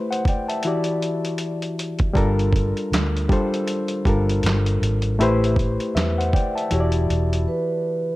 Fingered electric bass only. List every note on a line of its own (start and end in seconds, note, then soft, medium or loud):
2.16 2.72 G1 loud
2.92 3.27 D2 medium
4.06 4.41 G1 medium
4.44 4.79 G1 medium
4.82 5.17 G#1 medium
5.20 5.76 A1 medium
5.96 6.31 E2 medium
6.72 7.07 E1 medium
7.10 7.45 E1 medium